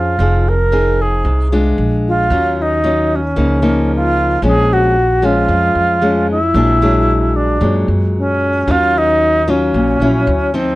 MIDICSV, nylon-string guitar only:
0, 0, Header, 1, 2, 480
1, 0, Start_track
1, 0, Key_signature, -5, "major"
1, 0, Tempo, 530504
1, 172, Time_signature, 4, 2, 24, 8
1, 4006, Key_signature, -5, "minor"
1, 9728, End_track
2, 0, Start_track
2, 0, Title_t, "Nylon-string guitar"
2, 0, Program_c, 0, 24
2, 0, Note_on_c, 0, 53, 52
2, 0, Note_on_c, 0, 61, 65
2, 0, Note_on_c, 0, 68, 60
2, 0, Note_on_c, 0, 72, 66
2, 136, Note_off_c, 0, 61, 0
2, 138, Note_off_c, 0, 68, 0
2, 140, Note_off_c, 0, 72, 0
2, 149, Note_off_c, 0, 53, 0
2, 179, Note_on_c, 0, 53, 51
2, 180, Note_on_c, 0, 60, 53
2, 183, Note_on_c, 0, 63, 48
2, 189, Note_on_c, 0, 68, 52
2, 484, Note_off_c, 0, 60, 0
2, 486, Note_off_c, 0, 63, 0
2, 490, Note_off_c, 0, 68, 0
2, 652, Note_on_c, 0, 60, 50
2, 654, Note_on_c, 0, 63, 58
2, 659, Note_on_c, 0, 68, 58
2, 1111, Note_off_c, 0, 53, 0
2, 1139, Note_on_c, 0, 48, 53
2, 1333, Note_off_c, 0, 60, 0
2, 1333, Note_off_c, 0, 63, 0
2, 1336, Note_off_c, 0, 68, 0
2, 1378, Note_on_c, 0, 56, 62
2, 1382, Note_on_c, 0, 62, 59
2, 1383, Note_on_c, 0, 65, 57
2, 1590, Note_off_c, 0, 48, 0
2, 2055, Note_off_c, 0, 56, 0
2, 2057, Note_off_c, 0, 62, 0
2, 2058, Note_off_c, 0, 65, 0
2, 2086, Note_on_c, 0, 51, 44
2, 2093, Note_on_c, 0, 54, 51
2, 2094, Note_on_c, 0, 61, 50
2, 2098, Note_on_c, 0, 65, 51
2, 2531, Note_off_c, 0, 54, 0
2, 2533, Note_off_c, 0, 61, 0
2, 2535, Note_off_c, 0, 65, 0
2, 2567, Note_on_c, 0, 54, 55
2, 2570, Note_on_c, 0, 61, 49
2, 2575, Note_on_c, 0, 65, 57
2, 2891, Note_off_c, 0, 54, 0
2, 2891, Note_off_c, 0, 61, 0
2, 2892, Note_off_c, 0, 65, 0
2, 3023, Note_off_c, 0, 51, 0
2, 3041, Note_on_c, 0, 49, 49
2, 3043, Note_on_c, 0, 53, 53
2, 3045, Note_on_c, 0, 58, 47
2, 3051, Note_on_c, 0, 63, 53
2, 3246, Note_off_c, 0, 53, 0
2, 3248, Note_off_c, 0, 58, 0
2, 3249, Note_off_c, 0, 63, 0
2, 3277, Note_on_c, 0, 53, 61
2, 3281, Note_on_c, 0, 58, 58
2, 3282, Note_on_c, 0, 63, 67
2, 3964, Note_off_c, 0, 53, 0
2, 3964, Note_off_c, 0, 58, 0
2, 3966, Note_off_c, 0, 63, 0
2, 3980, Note_off_c, 0, 49, 0
2, 4002, Note_on_c, 0, 46, 48
2, 4008, Note_on_c, 0, 53, 54
2, 4013, Note_on_c, 0, 56, 51
2, 4014, Note_on_c, 0, 61, 55
2, 4483, Note_off_c, 0, 53, 0
2, 4483, Note_off_c, 0, 56, 0
2, 4487, Note_off_c, 0, 61, 0
2, 4725, Note_on_c, 0, 53, 60
2, 4730, Note_on_c, 0, 56, 56
2, 4734, Note_on_c, 0, 61, 62
2, 4941, Note_off_c, 0, 46, 0
2, 4968, Note_on_c, 0, 41, 55
2, 5406, Note_off_c, 0, 53, 0
2, 5409, Note_off_c, 0, 56, 0
2, 5411, Note_off_c, 0, 61, 0
2, 5443, Note_on_c, 0, 53, 54
2, 5447, Note_on_c, 0, 56, 63
2, 5453, Note_on_c, 0, 61, 62
2, 5766, Note_off_c, 0, 53, 0
2, 5769, Note_off_c, 0, 56, 0
2, 5771, Note_off_c, 0, 61, 0
2, 5902, Note_off_c, 0, 41, 0
2, 5926, Note_on_c, 0, 46, 54
2, 5930, Note_on_c, 0, 54, 47
2, 5933, Note_on_c, 0, 56, 56
2, 5938, Note_on_c, 0, 62, 53
2, 6128, Note_off_c, 0, 54, 0
2, 6131, Note_off_c, 0, 56, 0
2, 6132, Note_off_c, 0, 62, 0
2, 6170, Note_on_c, 0, 54, 61
2, 6173, Note_on_c, 0, 56, 56
2, 6180, Note_on_c, 0, 62, 59
2, 6849, Note_off_c, 0, 54, 0
2, 6851, Note_off_c, 0, 56, 0
2, 6855, Note_off_c, 0, 62, 0
2, 6862, Note_off_c, 0, 46, 0
2, 6881, Note_on_c, 0, 46, 54
2, 6886, Note_on_c, 0, 54, 51
2, 6892, Note_on_c, 0, 56, 54
2, 7807, Note_off_c, 0, 54, 0
2, 7809, Note_off_c, 0, 56, 0
2, 7821, Note_off_c, 0, 46, 0
2, 7851, Note_on_c, 0, 54, 53
2, 7852, Note_on_c, 0, 51, 51
2, 7853, Note_on_c, 0, 61, 53
2, 7858, Note_on_c, 0, 65, 56
2, 8530, Note_off_c, 0, 54, 0
2, 8533, Note_off_c, 0, 61, 0
2, 8534, Note_off_c, 0, 65, 0
2, 8573, Note_on_c, 0, 54, 60
2, 8575, Note_on_c, 0, 61, 56
2, 8580, Note_on_c, 0, 65, 67
2, 8787, Note_off_c, 0, 51, 0
2, 8823, Note_on_c, 0, 46, 53
2, 9013, Note_off_c, 0, 54, 0
2, 9015, Note_off_c, 0, 61, 0
2, 9015, Note_off_c, 0, 65, 0
2, 9061, Note_on_c, 0, 54, 60
2, 9066, Note_on_c, 0, 61, 58
2, 9067, Note_on_c, 0, 64, 61
2, 9272, Note_off_c, 0, 46, 0
2, 9498, Note_off_c, 0, 54, 0
2, 9499, Note_off_c, 0, 61, 0
2, 9500, Note_off_c, 0, 64, 0
2, 9535, Note_on_c, 0, 53, 65
2, 9540, Note_on_c, 0, 60, 59
2, 9545, Note_on_c, 0, 63, 65
2, 9728, Note_off_c, 0, 53, 0
2, 9728, Note_off_c, 0, 60, 0
2, 9728, Note_off_c, 0, 63, 0
2, 9728, End_track
0, 0, End_of_file